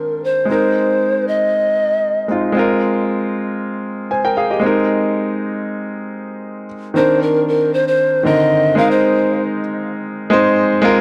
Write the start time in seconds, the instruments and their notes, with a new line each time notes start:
Already playing: grand piano D#3 C4 D4 A#4, pan flute A#4
0.24 pan flute C5
0.45 grand piano G#3 C4
0.50 grand piano D#4 A#4, pan flute C5
1.28 pan flute D#5
2.28 grand piano G#3 C4 D#4 F4
2.52 grand piano G#3 C4
2.57 grand piano F4 A#4
4.11 grand piano C5 G#5
4.25 grand piano A#4 G5
4.37 grand piano G#4 F5
4.50 grand piano G4 D#5
4.60 grand piano G#3 C4
4.64 grand piano D#4 A#4
6.94 grand piano D#3 C4 D4 A#4, pan flute C5
7.22 pan flute A#4
7.48 pan flute A#4
7.74 pan flute C5
7.88 pan flute C5
8.23 grand piano D3 D#3 C4 A#4, pan flute D#5
8.75 grand piano G#3 C4 D#4 A#4, pan flute F5
8.91 pan flute C5
10.30 grand piano G#3 C4 D#4 C5
10.82 grand piano G#3 C4 F4 A#4